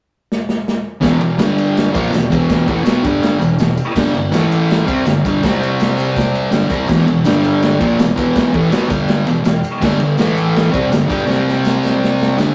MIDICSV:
0, 0, Header, 1, 3, 480
1, 0, Start_track
1, 0, Key_signature, 1, "minor"
1, 0, Tempo, 366300
1, 1346, Time_signature, 4, 2, 24, 8
1, 16442, End_track
2, 0, Start_track
2, 0, Title_t, "Distorted electric guitar"
2, 0, Program_c, 0, 30
2, 1328, Note_on_c, 0, 40, 106
2, 1333, Note_on_c, 0, 47, 106
2, 1346, Note_on_c, 0, 52, 119
2, 1556, Note_off_c, 0, 40, 0
2, 1562, Note_off_c, 0, 47, 0
2, 1572, Note_on_c, 0, 40, 68
2, 1578, Note_off_c, 0, 52, 0
2, 1578, Note_on_c, 0, 47, 65
2, 1771, Note_off_c, 0, 40, 0
2, 1774, Note_off_c, 0, 47, 0
2, 1817, Note_on_c, 0, 43, 82
2, 1825, Note_on_c, 0, 50, 96
2, 1831, Note_on_c, 0, 55, 91
2, 2513, Note_off_c, 0, 50, 0
2, 2519, Note_on_c, 0, 46, 95
2, 2534, Note_off_c, 0, 43, 0
2, 2537, Note_off_c, 0, 55, 0
2, 2543, Note_on_c, 0, 53, 100
2, 2543, Note_on_c, 0, 58, 102
2, 2756, Note_on_c, 0, 40, 66
2, 2761, Note_off_c, 0, 46, 0
2, 2766, Note_on_c, 0, 47, 73
2, 2777, Note_off_c, 0, 53, 0
2, 2777, Note_off_c, 0, 58, 0
2, 2962, Note_off_c, 0, 40, 0
2, 2967, Note_off_c, 0, 47, 0
2, 3018, Note_on_c, 0, 40, 98
2, 3033, Note_on_c, 0, 47, 106
2, 3042, Note_on_c, 0, 52, 96
2, 3487, Note_off_c, 0, 47, 0
2, 3491, Note_off_c, 0, 52, 0
2, 3492, Note_on_c, 0, 45, 91
2, 3494, Note_off_c, 0, 40, 0
2, 3507, Note_on_c, 0, 52, 102
2, 3510, Note_on_c, 0, 57, 96
2, 3707, Note_off_c, 0, 45, 0
2, 3713, Note_on_c, 0, 47, 78
2, 3724, Note_off_c, 0, 57, 0
2, 3725, Note_off_c, 0, 52, 0
2, 3729, Note_on_c, 0, 59, 96
2, 3730, Note_on_c, 0, 54, 85
2, 3961, Note_off_c, 0, 47, 0
2, 3969, Note_on_c, 0, 43, 103
2, 3970, Note_off_c, 0, 54, 0
2, 3970, Note_off_c, 0, 59, 0
2, 3974, Note_on_c, 0, 50, 97
2, 3980, Note_on_c, 0, 55, 111
2, 4439, Note_off_c, 0, 43, 0
2, 4445, Note_on_c, 0, 40, 63
2, 4448, Note_off_c, 0, 50, 0
2, 4453, Note_on_c, 0, 47, 74
2, 4455, Note_off_c, 0, 55, 0
2, 4646, Note_off_c, 0, 40, 0
2, 4650, Note_off_c, 0, 47, 0
2, 4714, Note_on_c, 0, 40, 71
2, 4715, Note_on_c, 0, 47, 76
2, 4901, Note_off_c, 0, 40, 0
2, 4901, Note_off_c, 0, 47, 0
2, 5186, Note_on_c, 0, 50, 103
2, 5187, Note_on_c, 0, 43, 99
2, 5196, Note_on_c, 0, 55, 113
2, 5413, Note_off_c, 0, 43, 0
2, 5418, Note_off_c, 0, 50, 0
2, 5423, Note_off_c, 0, 55, 0
2, 5428, Note_on_c, 0, 43, 72
2, 5439, Note_on_c, 0, 50, 80
2, 5618, Note_off_c, 0, 43, 0
2, 5623, Note_off_c, 0, 50, 0
2, 5660, Note_on_c, 0, 45, 93
2, 5663, Note_on_c, 0, 52, 84
2, 5674, Note_on_c, 0, 57, 100
2, 6365, Note_off_c, 0, 45, 0
2, 6369, Note_off_c, 0, 52, 0
2, 6370, Note_on_c, 0, 48, 93
2, 6374, Note_on_c, 0, 55, 99
2, 6381, Note_off_c, 0, 57, 0
2, 6386, Note_on_c, 0, 60, 101
2, 6610, Note_off_c, 0, 48, 0
2, 6612, Note_off_c, 0, 55, 0
2, 6618, Note_off_c, 0, 60, 0
2, 6639, Note_on_c, 0, 50, 70
2, 6640, Note_on_c, 0, 43, 72
2, 6823, Note_off_c, 0, 50, 0
2, 6824, Note_off_c, 0, 43, 0
2, 6870, Note_on_c, 0, 43, 94
2, 6882, Note_on_c, 0, 50, 98
2, 6884, Note_on_c, 0, 55, 94
2, 7099, Note_off_c, 0, 43, 0
2, 7105, Note_off_c, 0, 50, 0
2, 7107, Note_off_c, 0, 55, 0
2, 7120, Note_on_c, 0, 48, 97
2, 7132, Note_on_c, 0, 55, 104
2, 7133, Note_on_c, 0, 60, 111
2, 8522, Note_off_c, 0, 55, 0
2, 8532, Note_on_c, 0, 43, 95
2, 8533, Note_off_c, 0, 48, 0
2, 8538, Note_on_c, 0, 50, 95
2, 8538, Note_on_c, 0, 55, 109
2, 8550, Note_off_c, 0, 60, 0
2, 8763, Note_off_c, 0, 55, 0
2, 8768, Note_off_c, 0, 50, 0
2, 8770, Note_off_c, 0, 43, 0
2, 8773, Note_on_c, 0, 48, 98
2, 8779, Note_on_c, 0, 55, 101
2, 8792, Note_on_c, 0, 60, 106
2, 9010, Note_off_c, 0, 48, 0
2, 9012, Note_on_c, 0, 40, 102
2, 9013, Note_off_c, 0, 55, 0
2, 9020, Note_off_c, 0, 60, 0
2, 9022, Note_on_c, 0, 47, 101
2, 9028, Note_on_c, 0, 52, 103
2, 9237, Note_off_c, 0, 40, 0
2, 9243, Note_off_c, 0, 47, 0
2, 9253, Note_on_c, 0, 40, 66
2, 9258, Note_off_c, 0, 52, 0
2, 9258, Note_on_c, 0, 47, 72
2, 9449, Note_off_c, 0, 40, 0
2, 9452, Note_off_c, 0, 47, 0
2, 9490, Note_on_c, 0, 43, 86
2, 9502, Note_on_c, 0, 50, 86
2, 9519, Note_on_c, 0, 55, 93
2, 10208, Note_off_c, 0, 43, 0
2, 10214, Note_off_c, 0, 50, 0
2, 10219, Note_on_c, 0, 46, 106
2, 10222, Note_off_c, 0, 55, 0
2, 10227, Note_on_c, 0, 53, 92
2, 10236, Note_on_c, 0, 58, 96
2, 10453, Note_off_c, 0, 46, 0
2, 10457, Note_off_c, 0, 53, 0
2, 10461, Note_off_c, 0, 58, 0
2, 10473, Note_on_c, 0, 47, 76
2, 10484, Note_on_c, 0, 40, 73
2, 10659, Note_off_c, 0, 47, 0
2, 10665, Note_off_c, 0, 40, 0
2, 10689, Note_on_c, 0, 40, 97
2, 10694, Note_on_c, 0, 47, 97
2, 10701, Note_on_c, 0, 52, 100
2, 11168, Note_off_c, 0, 40, 0
2, 11170, Note_off_c, 0, 47, 0
2, 11174, Note_off_c, 0, 52, 0
2, 11180, Note_on_c, 0, 45, 93
2, 11194, Note_on_c, 0, 52, 99
2, 11197, Note_on_c, 0, 57, 96
2, 11395, Note_off_c, 0, 45, 0
2, 11400, Note_on_c, 0, 47, 85
2, 11412, Note_off_c, 0, 52, 0
2, 11413, Note_off_c, 0, 57, 0
2, 11417, Note_on_c, 0, 54, 98
2, 11418, Note_on_c, 0, 59, 104
2, 11635, Note_off_c, 0, 47, 0
2, 11637, Note_off_c, 0, 54, 0
2, 11637, Note_on_c, 0, 43, 89
2, 11641, Note_on_c, 0, 50, 104
2, 11643, Note_on_c, 0, 55, 105
2, 11652, Note_off_c, 0, 59, 0
2, 12122, Note_off_c, 0, 43, 0
2, 12124, Note_off_c, 0, 50, 0
2, 12124, Note_off_c, 0, 55, 0
2, 12140, Note_on_c, 0, 40, 67
2, 12145, Note_on_c, 0, 47, 71
2, 12332, Note_off_c, 0, 40, 0
2, 12335, Note_off_c, 0, 47, 0
2, 12367, Note_on_c, 0, 47, 79
2, 12370, Note_on_c, 0, 40, 60
2, 12566, Note_off_c, 0, 47, 0
2, 12568, Note_off_c, 0, 40, 0
2, 12852, Note_on_c, 0, 43, 107
2, 12855, Note_on_c, 0, 55, 106
2, 12857, Note_on_c, 0, 50, 103
2, 13081, Note_off_c, 0, 50, 0
2, 13082, Note_off_c, 0, 43, 0
2, 13091, Note_off_c, 0, 55, 0
2, 13097, Note_on_c, 0, 50, 79
2, 13098, Note_on_c, 0, 43, 73
2, 13291, Note_off_c, 0, 43, 0
2, 13291, Note_off_c, 0, 50, 0
2, 13340, Note_on_c, 0, 45, 88
2, 13349, Note_on_c, 0, 52, 88
2, 13354, Note_on_c, 0, 57, 98
2, 14025, Note_off_c, 0, 45, 0
2, 14030, Note_on_c, 0, 48, 93
2, 14035, Note_off_c, 0, 52, 0
2, 14040, Note_on_c, 0, 55, 103
2, 14041, Note_off_c, 0, 57, 0
2, 14047, Note_on_c, 0, 60, 104
2, 14275, Note_on_c, 0, 43, 70
2, 14279, Note_off_c, 0, 48, 0
2, 14284, Note_off_c, 0, 55, 0
2, 14287, Note_off_c, 0, 60, 0
2, 14291, Note_on_c, 0, 50, 80
2, 14481, Note_off_c, 0, 43, 0
2, 14489, Note_off_c, 0, 50, 0
2, 14520, Note_on_c, 0, 50, 95
2, 14523, Note_on_c, 0, 43, 98
2, 14532, Note_on_c, 0, 55, 114
2, 14747, Note_off_c, 0, 55, 0
2, 14751, Note_off_c, 0, 50, 0
2, 14757, Note_on_c, 0, 48, 105
2, 14763, Note_on_c, 0, 55, 112
2, 14766, Note_off_c, 0, 43, 0
2, 14773, Note_on_c, 0, 60, 119
2, 16208, Note_off_c, 0, 48, 0
2, 16211, Note_off_c, 0, 55, 0
2, 16213, Note_on_c, 0, 43, 98
2, 16216, Note_off_c, 0, 60, 0
2, 16222, Note_on_c, 0, 50, 105
2, 16239, Note_on_c, 0, 55, 105
2, 16428, Note_off_c, 0, 55, 0
2, 16438, Note_off_c, 0, 50, 0
2, 16442, Note_off_c, 0, 43, 0
2, 16442, End_track
3, 0, Start_track
3, 0, Title_t, "Drums"
3, 415, Note_on_c, 9, 38, 72
3, 546, Note_off_c, 9, 38, 0
3, 642, Note_on_c, 9, 38, 80
3, 773, Note_off_c, 9, 38, 0
3, 893, Note_on_c, 9, 38, 86
3, 1024, Note_off_c, 9, 38, 0
3, 1340, Note_on_c, 9, 51, 96
3, 1351, Note_on_c, 9, 54, 69
3, 1352, Note_on_c, 9, 36, 106
3, 1353, Note_on_c, 9, 38, 107
3, 1471, Note_off_c, 9, 51, 0
3, 1482, Note_off_c, 9, 54, 0
3, 1483, Note_off_c, 9, 36, 0
3, 1484, Note_off_c, 9, 38, 0
3, 1583, Note_on_c, 9, 51, 74
3, 1714, Note_off_c, 9, 51, 0
3, 1820, Note_on_c, 9, 51, 106
3, 1833, Note_on_c, 9, 38, 114
3, 1839, Note_on_c, 9, 54, 98
3, 1951, Note_off_c, 9, 51, 0
3, 1964, Note_off_c, 9, 38, 0
3, 1970, Note_off_c, 9, 54, 0
3, 2071, Note_on_c, 9, 54, 76
3, 2073, Note_on_c, 9, 51, 74
3, 2202, Note_off_c, 9, 54, 0
3, 2204, Note_off_c, 9, 51, 0
3, 2308, Note_on_c, 9, 54, 30
3, 2321, Note_on_c, 9, 51, 100
3, 2334, Note_on_c, 9, 38, 102
3, 2439, Note_off_c, 9, 54, 0
3, 2452, Note_off_c, 9, 51, 0
3, 2465, Note_off_c, 9, 38, 0
3, 2541, Note_on_c, 9, 54, 69
3, 2556, Note_on_c, 9, 36, 113
3, 2568, Note_on_c, 9, 51, 82
3, 2672, Note_off_c, 9, 54, 0
3, 2688, Note_off_c, 9, 36, 0
3, 2699, Note_off_c, 9, 51, 0
3, 2787, Note_on_c, 9, 54, 93
3, 2809, Note_on_c, 9, 51, 109
3, 2822, Note_on_c, 9, 38, 118
3, 2918, Note_off_c, 9, 54, 0
3, 2940, Note_off_c, 9, 51, 0
3, 2953, Note_off_c, 9, 38, 0
3, 3033, Note_on_c, 9, 54, 79
3, 3040, Note_on_c, 9, 36, 106
3, 3051, Note_on_c, 9, 51, 77
3, 3164, Note_off_c, 9, 54, 0
3, 3171, Note_off_c, 9, 36, 0
3, 3182, Note_off_c, 9, 51, 0
3, 3258, Note_on_c, 9, 54, 66
3, 3270, Note_on_c, 9, 51, 101
3, 3275, Note_on_c, 9, 36, 102
3, 3283, Note_on_c, 9, 38, 108
3, 3389, Note_off_c, 9, 54, 0
3, 3401, Note_off_c, 9, 51, 0
3, 3406, Note_off_c, 9, 36, 0
3, 3414, Note_off_c, 9, 38, 0
3, 3513, Note_on_c, 9, 36, 103
3, 3519, Note_on_c, 9, 51, 72
3, 3644, Note_off_c, 9, 36, 0
3, 3650, Note_off_c, 9, 51, 0
3, 3741, Note_on_c, 9, 54, 96
3, 3753, Note_on_c, 9, 51, 110
3, 3766, Note_on_c, 9, 38, 117
3, 3872, Note_off_c, 9, 54, 0
3, 3884, Note_off_c, 9, 51, 0
3, 3897, Note_off_c, 9, 38, 0
3, 3991, Note_on_c, 9, 54, 83
3, 3992, Note_on_c, 9, 36, 109
3, 3993, Note_on_c, 9, 51, 73
3, 4122, Note_off_c, 9, 54, 0
3, 4123, Note_off_c, 9, 36, 0
3, 4124, Note_off_c, 9, 51, 0
3, 4231, Note_on_c, 9, 51, 92
3, 4237, Note_on_c, 9, 54, 30
3, 4245, Note_on_c, 9, 38, 104
3, 4362, Note_off_c, 9, 51, 0
3, 4368, Note_off_c, 9, 54, 0
3, 4376, Note_off_c, 9, 38, 0
3, 4468, Note_on_c, 9, 54, 76
3, 4482, Note_on_c, 9, 51, 75
3, 4600, Note_off_c, 9, 54, 0
3, 4613, Note_off_c, 9, 51, 0
3, 4697, Note_on_c, 9, 54, 103
3, 4721, Note_on_c, 9, 51, 94
3, 4734, Note_on_c, 9, 38, 117
3, 4828, Note_off_c, 9, 54, 0
3, 4852, Note_off_c, 9, 51, 0
3, 4865, Note_off_c, 9, 38, 0
3, 4942, Note_on_c, 9, 54, 88
3, 4947, Note_on_c, 9, 51, 69
3, 5073, Note_off_c, 9, 54, 0
3, 5078, Note_off_c, 9, 51, 0
3, 5181, Note_on_c, 9, 54, 77
3, 5190, Note_on_c, 9, 36, 109
3, 5192, Note_on_c, 9, 49, 99
3, 5205, Note_on_c, 9, 38, 116
3, 5312, Note_off_c, 9, 54, 0
3, 5321, Note_off_c, 9, 36, 0
3, 5323, Note_off_c, 9, 49, 0
3, 5336, Note_off_c, 9, 38, 0
3, 5427, Note_on_c, 9, 51, 68
3, 5558, Note_off_c, 9, 51, 0
3, 5661, Note_on_c, 9, 54, 105
3, 5683, Note_on_c, 9, 51, 109
3, 5696, Note_on_c, 9, 38, 122
3, 5792, Note_off_c, 9, 54, 0
3, 5814, Note_off_c, 9, 51, 0
3, 5827, Note_off_c, 9, 38, 0
3, 5907, Note_on_c, 9, 54, 77
3, 5927, Note_on_c, 9, 51, 74
3, 6038, Note_off_c, 9, 54, 0
3, 6058, Note_off_c, 9, 51, 0
3, 6162, Note_on_c, 9, 54, 31
3, 6166, Note_on_c, 9, 51, 94
3, 6179, Note_on_c, 9, 38, 105
3, 6293, Note_off_c, 9, 54, 0
3, 6297, Note_off_c, 9, 51, 0
3, 6310, Note_off_c, 9, 38, 0
3, 6388, Note_on_c, 9, 54, 71
3, 6398, Note_on_c, 9, 36, 113
3, 6402, Note_on_c, 9, 51, 88
3, 6520, Note_off_c, 9, 54, 0
3, 6529, Note_off_c, 9, 36, 0
3, 6533, Note_off_c, 9, 51, 0
3, 6624, Note_on_c, 9, 54, 95
3, 6639, Note_on_c, 9, 51, 108
3, 6652, Note_on_c, 9, 38, 115
3, 6755, Note_off_c, 9, 54, 0
3, 6770, Note_off_c, 9, 51, 0
3, 6783, Note_off_c, 9, 38, 0
3, 6879, Note_on_c, 9, 54, 77
3, 6880, Note_on_c, 9, 36, 109
3, 6889, Note_on_c, 9, 51, 77
3, 7010, Note_off_c, 9, 54, 0
3, 7011, Note_off_c, 9, 36, 0
3, 7020, Note_off_c, 9, 51, 0
3, 7122, Note_on_c, 9, 36, 114
3, 7124, Note_on_c, 9, 54, 73
3, 7131, Note_on_c, 9, 51, 112
3, 7144, Note_on_c, 9, 38, 106
3, 7253, Note_off_c, 9, 36, 0
3, 7255, Note_off_c, 9, 54, 0
3, 7262, Note_off_c, 9, 51, 0
3, 7275, Note_off_c, 9, 38, 0
3, 7362, Note_on_c, 9, 54, 29
3, 7383, Note_on_c, 9, 51, 77
3, 7493, Note_off_c, 9, 54, 0
3, 7514, Note_off_c, 9, 51, 0
3, 7600, Note_on_c, 9, 54, 91
3, 7611, Note_on_c, 9, 51, 101
3, 7624, Note_on_c, 9, 38, 120
3, 7731, Note_off_c, 9, 54, 0
3, 7742, Note_off_c, 9, 51, 0
3, 7755, Note_off_c, 9, 38, 0
3, 7833, Note_on_c, 9, 54, 79
3, 7861, Note_on_c, 9, 51, 70
3, 7964, Note_off_c, 9, 54, 0
3, 7992, Note_off_c, 9, 51, 0
3, 8074, Note_on_c, 9, 54, 32
3, 8078, Note_on_c, 9, 36, 101
3, 8090, Note_on_c, 9, 51, 89
3, 8103, Note_on_c, 9, 38, 99
3, 8205, Note_off_c, 9, 54, 0
3, 8209, Note_off_c, 9, 36, 0
3, 8221, Note_off_c, 9, 51, 0
3, 8234, Note_off_c, 9, 38, 0
3, 8324, Note_on_c, 9, 51, 77
3, 8455, Note_off_c, 9, 51, 0
3, 8538, Note_on_c, 9, 54, 99
3, 8545, Note_on_c, 9, 51, 97
3, 8558, Note_on_c, 9, 38, 118
3, 8669, Note_off_c, 9, 54, 0
3, 8676, Note_off_c, 9, 51, 0
3, 8689, Note_off_c, 9, 38, 0
3, 8768, Note_on_c, 9, 54, 84
3, 8790, Note_on_c, 9, 36, 96
3, 8799, Note_on_c, 9, 51, 65
3, 8899, Note_off_c, 9, 54, 0
3, 8921, Note_off_c, 9, 36, 0
3, 8930, Note_off_c, 9, 51, 0
3, 9010, Note_on_c, 9, 54, 79
3, 9032, Note_on_c, 9, 36, 112
3, 9043, Note_on_c, 9, 49, 99
3, 9056, Note_on_c, 9, 38, 111
3, 9141, Note_off_c, 9, 54, 0
3, 9163, Note_off_c, 9, 36, 0
3, 9174, Note_off_c, 9, 49, 0
3, 9187, Note_off_c, 9, 38, 0
3, 9275, Note_on_c, 9, 51, 74
3, 9406, Note_off_c, 9, 51, 0
3, 9495, Note_on_c, 9, 54, 103
3, 9516, Note_on_c, 9, 51, 106
3, 9529, Note_on_c, 9, 38, 122
3, 9626, Note_off_c, 9, 54, 0
3, 9647, Note_off_c, 9, 51, 0
3, 9660, Note_off_c, 9, 38, 0
3, 9742, Note_on_c, 9, 54, 81
3, 9758, Note_on_c, 9, 51, 76
3, 9873, Note_off_c, 9, 54, 0
3, 9889, Note_off_c, 9, 51, 0
3, 9967, Note_on_c, 9, 54, 32
3, 9993, Note_on_c, 9, 51, 99
3, 10006, Note_on_c, 9, 38, 100
3, 10098, Note_off_c, 9, 54, 0
3, 10124, Note_off_c, 9, 51, 0
3, 10138, Note_off_c, 9, 38, 0
3, 10230, Note_on_c, 9, 54, 76
3, 10232, Note_on_c, 9, 36, 111
3, 10235, Note_on_c, 9, 51, 78
3, 10361, Note_off_c, 9, 54, 0
3, 10363, Note_off_c, 9, 36, 0
3, 10366, Note_off_c, 9, 51, 0
3, 10471, Note_on_c, 9, 51, 106
3, 10474, Note_on_c, 9, 54, 101
3, 10484, Note_on_c, 9, 38, 114
3, 10602, Note_off_c, 9, 51, 0
3, 10605, Note_off_c, 9, 54, 0
3, 10615, Note_off_c, 9, 38, 0
3, 10711, Note_on_c, 9, 54, 81
3, 10714, Note_on_c, 9, 36, 99
3, 10727, Note_on_c, 9, 51, 74
3, 10842, Note_off_c, 9, 54, 0
3, 10845, Note_off_c, 9, 36, 0
3, 10858, Note_off_c, 9, 51, 0
3, 10954, Note_on_c, 9, 36, 102
3, 10957, Note_on_c, 9, 54, 83
3, 10959, Note_on_c, 9, 51, 109
3, 10972, Note_on_c, 9, 38, 115
3, 11085, Note_off_c, 9, 36, 0
3, 11088, Note_off_c, 9, 54, 0
3, 11090, Note_off_c, 9, 51, 0
3, 11103, Note_off_c, 9, 38, 0
3, 11192, Note_on_c, 9, 51, 77
3, 11193, Note_on_c, 9, 36, 100
3, 11323, Note_off_c, 9, 51, 0
3, 11324, Note_off_c, 9, 36, 0
3, 11427, Note_on_c, 9, 51, 107
3, 11429, Note_on_c, 9, 54, 102
3, 11440, Note_on_c, 9, 38, 118
3, 11558, Note_off_c, 9, 51, 0
3, 11560, Note_off_c, 9, 54, 0
3, 11571, Note_off_c, 9, 38, 0
3, 11661, Note_on_c, 9, 51, 78
3, 11667, Note_on_c, 9, 54, 84
3, 11669, Note_on_c, 9, 36, 109
3, 11792, Note_off_c, 9, 51, 0
3, 11798, Note_off_c, 9, 54, 0
3, 11800, Note_off_c, 9, 36, 0
3, 11903, Note_on_c, 9, 51, 99
3, 11910, Note_on_c, 9, 54, 32
3, 11916, Note_on_c, 9, 38, 106
3, 12034, Note_off_c, 9, 51, 0
3, 12041, Note_off_c, 9, 54, 0
3, 12047, Note_off_c, 9, 38, 0
3, 12139, Note_on_c, 9, 54, 63
3, 12143, Note_on_c, 9, 51, 84
3, 12270, Note_off_c, 9, 54, 0
3, 12275, Note_off_c, 9, 51, 0
3, 12377, Note_on_c, 9, 54, 97
3, 12387, Note_on_c, 9, 51, 106
3, 12400, Note_on_c, 9, 38, 114
3, 12508, Note_off_c, 9, 54, 0
3, 12518, Note_off_c, 9, 51, 0
3, 12531, Note_off_c, 9, 38, 0
3, 12623, Note_on_c, 9, 54, 72
3, 12637, Note_on_c, 9, 51, 70
3, 12754, Note_off_c, 9, 54, 0
3, 12768, Note_off_c, 9, 51, 0
3, 12863, Note_on_c, 9, 54, 66
3, 12869, Note_on_c, 9, 57, 104
3, 12871, Note_on_c, 9, 36, 103
3, 12882, Note_on_c, 9, 38, 111
3, 12994, Note_off_c, 9, 54, 0
3, 13000, Note_off_c, 9, 57, 0
3, 13002, Note_off_c, 9, 36, 0
3, 13013, Note_off_c, 9, 38, 0
3, 13101, Note_on_c, 9, 51, 73
3, 13232, Note_off_c, 9, 51, 0
3, 13331, Note_on_c, 9, 54, 86
3, 13346, Note_on_c, 9, 51, 98
3, 13359, Note_on_c, 9, 38, 116
3, 13462, Note_off_c, 9, 54, 0
3, 13477, Note_off_c, 9, 51, 0
3, 13490, Note_off_c, 9, 38, 0
3, 13581, Note_on_c, 9, 54, 71
3, 13602, Note_on_c, 9, 51, 69
3, 13712, Note_off_c, 9, 54, 0
3, 13733, Note_off_c, 9, 51, 0
3, 13823, Note_on_c, 9, 54, 28
3, 13840, Note_on_c, 9, 51, 90
3, 13854, Note_on_c, 9, 38, 99
3, 13954, Note_off_c, 9, 54, 0
3, 13971, Note_off_c, 9, 51, 0
3, 13985, Note_off_c, 9, 38, 0
3, 14056, Note_on_c, 9, 54, 71
3, 14072, Note_on_c, 9, 36, 109
3, 14084, Note_on_c, 9, 51, 77
3, 14187, Note_off_c, 9, 54, 0
3, 14203, Note_off_c, 9, 36, 0
3, 14215, Note_off_c, 9, 51, 0
3, 14305, Note_on_c, 9, 54, 92
3, 14316, Note_on_c, 9, 51, 101
3, 14329, Note_on_c, 9, 38, 113
3, 14436, Note_off_c, 9, 54, 0
3, 14447, Note_off_c, 9, 51, 0
3, 14460, Note_off_c, 9, 38, 0
3, 14539, Note_on_c, 9, 54, 77
3, 14550, Note_on_c, 9, 36, 101
3, 14563, Note_on_c, 9, 51, 77
3, 14670, Note_off_c, 9, 54, 0
3, 14681, Note_off_c, 9, 36, 0
3, 14694, Note_off_c, 9, 51, 0
3, 14771, Note_on_c, 9, 54, 76
3, 14805, Note_on_c, 9, 38, 64
3, 14902, Note_off_c, 9, 54, 0
3, 14936, Note_off_c, 9, 38, 0
3, 15021, Note_on_c, 9, 54, 30
3, 15049, Note_on_c, 9, 38, 56
3, 15152, Note_off_c, 9, 54, 0
3, 15180, Note_off_c, 9, 38, 0
3, 15258, Note_on_c, 9, 54, 95
3, 15280, Note_on_c, 9, 38, 82
3, 15389, Note_off_c, 9, 54, 0
3, 15411, Note_off_c, 9, 38, 0
3, 15503, Note_on_c, 9, 54, 76
3, 15531, Note_on_c, 9, 38, 72
3, 15634, Note_off_c, 9, 54, 0
3, 15662, Note_off_c, 9, 38, 0
3, 15749, Note_on_c, 9, 54, 32
3, 15776, Note_on_c, 9, 38, 87
3, 15880, Note_off_c, 9, 54, 0
3, 15907, Note_off_c, 9, 38, 0
3, 15968, Note_on_c, 9, 54, 76
3, 16013, Note_on_c, 9, 38, 86
3, 16099, Note_off_c, 9, 54, 0
3, 16144, Note_off_c, 9, 38, 0
3, 16227, Note_on_c, 9, 54, 98
3, 16243, Note_on_c, 9, 38, 97
3, 16358, Note_off_c, 9, 54, 0
3, 16374, Note_off_c, 9, 38, 0
3, 16442, End_track
0, 0, End_of_file